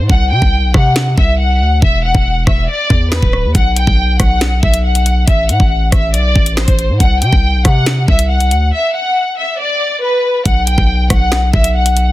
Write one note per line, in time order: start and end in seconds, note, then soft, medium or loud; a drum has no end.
0.09 0.33 C2 loud
0.09 0.29 F#5 medium
0.09 kick loud
0.31 0.41 C3 loud
0.31 0.72 G5 medium
0.42 0.65 C2 loud
0.42 kick medium
0.64 0.74 B1 loud
0.74 1.16 C3 loud
0.74 1.15 F#5 medium
0.74 kick loud
0.74 cross-stick medium
0.96 finger snap medium
0.96 snare loud
1.18 1.62 C2 loud
1.18 1.37 E5 medium
1.18 kick loud
1.39 1.79 F#5 medium
1.61 1.81 D2 loud
1.82 2.13 E1 loud
1.82 2.02 E5 loud
1.82 kick loud
2.04 2.44 F#5 medium
2.15 2.46 E1 loud
2.15 kick medium
2.47 2.68 E1 loud
2.47 2.66 E5 medium
2.47 kick loud
2.47 cross-stick medium
2.68 3.09 D5 loud
2.90 3.21 E2 loud
2.90 kick loud
3.12 3.52 B4 medium
3.12 finger snap loud
3.12 snare loud
3.23 3.46 D1 loud
3.23 kick loud
3.33 cross-stick medium
3.44 3.54 E2 loud
3.55 3.86 B1 loud
3.55 3.74 F#5 medium
3.55 kick loud
3.55 closed hi-hat medium
3.76 4.17 G5 medium
3.76 closed hi-hat medium
3.87 4.18 B1 loud
3.87 kick medium
4.20 4.61 B1 loud
4.20 4.60 F#5 medium
4.20 kick medium
4.20 cross-stick medium
4.20 closed hi-hat medium
4.41 finger snap medium
4.41 snare loud
4.41 closed hi-hat medium
4.63 5.25 B1 loud
4.63 4.82 E5 medium
4.63 kick loud
4.74 closed hi-hat loud
4.85 5.25 F#5 medium
4.95 closed hi-hat medium
5.06 closed hi-hat medium
5.28 5.51 A1 loud
5.28 5.47 E5 loud
5.28 kick loud
5.28 closed hi-hat medium
5.49 5.59 A2 loud
5.49 5.90 F#5 medium
5.49 closed hi-hat medium
5.60 5.91 A1 loud
5.60 kick medium
5.92 6.15 A1 loud
5.92 6.12 E5 medium
5.92 kick loud
5.92 cross-stick medium
5.92 closed hi-hat medium
6.14 6.34 B1 loud
6.14 6.55 D5 medium
6.14 closed hi-hat medium
6.36 6.67 A1 loud
6.36 kick loud
6.46 closed hi-hat loud
6.57 6.97 C5 medium
6.57 finger snap loud
6.57 snare loud
6.68 6.91 A1 loud
6.68 kick medium
6.68 closed hi-hat medium
6.79 closed hi-hat medium
6.89 7.00 A2 loud
7.00 7.23 C2 loud
7.00 7.20 F#5 medium
7.00 kick loud
7.00 closed hi-hat medium
7.22 7.32 C3 loud
7.22 7.62 G5 medium
7.22 closed hi-hat medium
7.33 7.56 C2 loud
7.33 kick medium
7.54 7.64 B1 loud
7.65 8.06 C3 loud
7.65 8.05 F#5 medium
7.65 kick medium
7.65 cross-stick medium
7.65 closed hi-hat medium
7.86 finger snap medium
7.86 snare loud
7.86 closed hi-hat medium
8.08 8.53 C2 loud
8.08 8.28 E5 medium
8.08 kick loud
8.19 closed hi-hat loud
8.29 8.70 F#5 medium
8.40 closed hi-hat medium
8.51 8.72 D2 loud
8.51 closed hi-hat medium
8.73 8.92 E5 loud
8.95 9.35 F#5 medium
9.38 9.57 E5 medium
9.59 10.00 D5 medium
10.03 10.43 B4 medium
10.46 10.77 B1 loud
10.46 10.65 F#5 loud
10.46 kick loud
10.46 closed hi-hat medium
10.67 11.08 G5 medium
10.67 closed hi-hat medium
10.78 11.09 B1 loud
10.78 kick medium
11.10 11.52 B1 loud
11.10 11.51 F#5 medium
11.10 kick loud
11.10 cross-stick medium
11.10 closed hi-hat medium
11.32 finger snap medium
11.32 snare loud
11.32 closed hi-hat medium
11.53 12.12 B1 loud
11.53 11.73 E5 medium
11.53 kick loud
11.64 closed hi-hat loud
11.75 12.12 F#5 medium
11.86 closed hi-hat medium
11.97 closed hi-hat medium